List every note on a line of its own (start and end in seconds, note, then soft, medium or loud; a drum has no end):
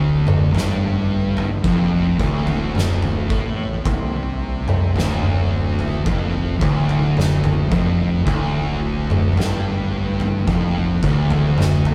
0.00 0.49 D1 medium
0.00 0.52 D2 loud
0.00 11.95 D3 medium
0.00 11.95 A3 medium
0.00 11.95 E4 medium
0.27 mid tom medium
0.52 1.59 G1 loud
0.52 1.62 G2 loud
0.52 floor tom medium
0.57 snare medium
1.37 floor tom medium
1.64 2.16 F1 medium
1.64 2.18 F2 medium
1.64 kick loud
2.19 3.26 D1 medium
2.19 3.28 D2 loud
2.19 kick loud
2.47 floor tom medium
2.75 snare medium
2.75 mid tom medium
3.02 floor tom medium
3.29 3.81 A1 medium
3.29 3.83 A2 loud
3.29 kick loud
3.85 4.92 C2 medium
3.85 4.94 C3 loud
3.85 kick loud
3.85 floor tom medium
4.68 mid tom medium
4.95 6.02 D1 loud
4.95 6.04 D2 loud
4.95 snare medium
4.95 floor tom medium
5.23 mid tom medium
5.79 floor tom medium
6.06 6.57 F1 medium
6.06 6.59 F2 medium
6.06 kick loud
6.61 7.68 D1 medium
6.61 7.70 D2 medium
6.61 kick loud
6.89 floor tom medium
7.17 snare medium
7.17 mid tom medium
7.44 floor tom medium
7.44 mid tom medium
7.71 8.23 F1 medium
7.71 8.25 F2 loud
7.71 kick loud
8.26 9.33 D1 medium
8.26 9.35 D2 loud
8.26 kick medium
8.26 floor tom medium
9.10 mid tom medium
9.36 10.43 G1 loud
9.36 10.46 G2 loud
9.36 floor tom medium
9.40 snare medium
10.20 floor tom medium
10.47 10.99 F1 medium
10.47 11.01 F2 loud
10.47 kick loud
11.03 11.95 D1 loud
11.03 11.95 D2 loud
11.03 kick loud
11.30 floor tom medium
11.58 snare medium
11.58 mid tom medium
11.85 floor tom medium